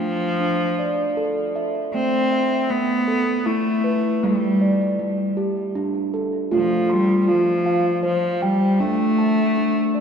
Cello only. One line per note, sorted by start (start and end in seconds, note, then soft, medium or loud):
0.00 1.56 F3 medium
1.94 2.71 C4 medium
2.69 3.47 B3 medium
3.46 4.24 A3 medium
4.23 5.09 G3 medium
6.54 6.93 F3 medium
6.91 7.21 G3 medium
7.21 7.30 G3 medium
7.29 8.03 F3 medium
8.04 8.43 F3 medium
8.42 8.82 G3 medium
8.80 10.00 A3 medium